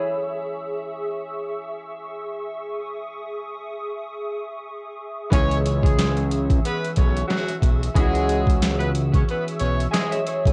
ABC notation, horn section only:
X:1
M:4/4
L:1/16
Q:"Swing 16ths" 1/4=91
K:C#m
V:1 name="Horn section"
z16 | z16 | [Cc]2 z [G,G]3 z2 [B,B]2 [Cc]2 [F,F]2 z2 | [G,G]4 z [B,B] z [Cc] [B,B] z [Cc]2 [G,G]2 z2 |]